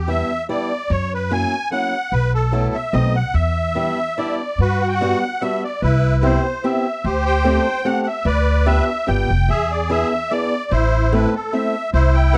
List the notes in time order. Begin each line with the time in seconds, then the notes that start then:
Already playing: E2
0.08 G3 B3 D4 E4 E5
0.49 G3 B3 D4 E4 D5
0.90 F#2 C#5
1.14 B4
1.31 F#3 A#3 C#4 E4 G#5
1.71 F#3 A#3 C#4 E4 F#5
2.12 B1 B4
2.34 A4
2.52 F#3 A3 B3 E4
2.74 E5
2.93 B1 A3 B3 C4 D#4 D#5
3.15 F#5
3.34 E2 E5
3.75 G3 B3 D4 E4
4.18 G3 B3 D4 E4 D5
4.58 G2 F#4 B4
4.81 F#5
4.88 G5
4.94 F#5
5.01 G3 B3 D4 F#4
5.41 G3 B3 D4 F#4 E5
5.64 D5
5.82 C2 E4 B4
6.22 B3 C4 E4 G4 C5
6.63 B3 C4 E4 G4 E5
7.04 D2 G4 C5
7.26 C5 G5
7.44 A3 C4 D4 G4
7.85 A3 C4 D4 G4 F#5
8.03 F#5
8.07 E5
8.25 D2 B4 D5
8.66 B3 D4 F4 G4 E5
9.07 G1 B3 D4 F4 G4 G5
9.30 F1
9.49 E2 G#4 E5
9.71 D5
9.90 B3 D4 E4 G#4 E5
10.31 B3 D4 E4 G#4 D5
10.71 A1 E4 C5
11.12 A3 C4 E4 A4 B4
11.35 A4
11.53 A3 C4 E4 A4 E5
11.94 C2 E4 C5
12.14 G5
12.33 B3 C4 E4 G4 F#5